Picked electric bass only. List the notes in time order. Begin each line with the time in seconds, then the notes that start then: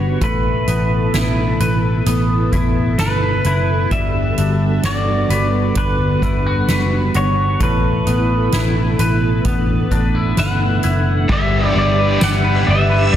Already playing: G1
0.21 A1
0.68 A1
1.14 A1
1.60 A1
2.06 A1
2.52 A1
3.00 G1
3.45 F#1
3.91 G1
4.38 G1
4.84 G1
5.29 G1
5.76 G1
6.22 G1
6.69 F#1
7.15 G1
7.60 A1
8.07 A1
8.54 A1
8.99 A1
9.45 A1
9.91 A1
10.38 G1
10.85 F#1
11.29 G1
11.76 G1
12.22 G1
12.68 G1